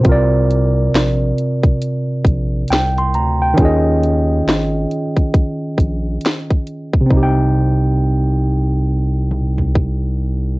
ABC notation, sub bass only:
X:1
M:4/4
L:1/8
Q:"Swing 16ths" 1/4=68
K:Cm
V:1 name="Sub bass" clef=bass
C,,2 B,,, z2 B,,, C,, D,, | E,,2 A,,, z2 B,,, z2 | C,,8 |]